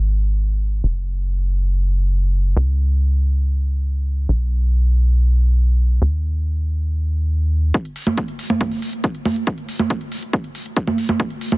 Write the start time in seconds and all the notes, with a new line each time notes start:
Already playing: G#1
0.84 F#1
2.57 C#2
4.29 B1
6.02 D#2
7.74 kick, closed hi-hat
7.85 closed hi-hat
7.96 open hi-hat
8.07 closed hi-hat, high conga
8.17 kick, closed hi-hat
8.28 closed hi-hat
8.39 open hi-hat
8.50 high conga
8.61 kick, closed hi-hat, high conga
8.72 open hi-hat
8.82 open hi-hat
8.93 closed hi-hat
9.04 kick, closed hi-hat
9.15 closed hi-hat
9.26 open hi-hat, high conga
9.36 closed hi-hat
9.47 kick, closed hi-hat
9.58 closed hi-hat
9.69 open hi-hat
9.79 closed hi-hat, high conga
9.90 kick, closed hi-hat
10.01 closed hi-hat
10.12 open hi-hat
10.23 closed hi-hat
10.33 kick, closed hi-hat
10.44 closed hi-hat
10.55 open hi-hat
10.66 closed hi-hat
10.77 kick, closed hi-hat
10.87 closed hi-hat, high conga
10.98 open hi-hat
11.09 closed hi-hat, high conga
11.20 kick, closed hi-hat
11.30 closed hi-hat
11.41 open hi-hat
11.52 high conga